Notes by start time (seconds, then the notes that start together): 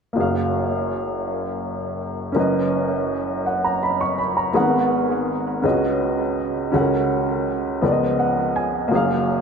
0.13 F#1 F#2 A#3 F#4
0.18 G#4 F5
2.32 F#1 F#2 C#4 A#4
2.37 B4 D#5
3.46 F#5
3.64 A#5
3.83 B5
4.01 C#6
4.18 B5
4.37 A#5
4.53 G#1 G#2 A#3 G#4 A#4 F#5
4.59 B3
5.62 C#2 C#3 C#4 F4 B4 D#5
5.70 F#4
6.72 C#2 C#3 C#4 F#4 A4
6.76 F#5
6.81 A#4
7.82 C#2 C#3 F3 B3 A#4 D5
7.92 D#5
8.19 F#5
8.56 G#5
8.88 F#1 F#2 A#3 F#4
8.93 G#4 F5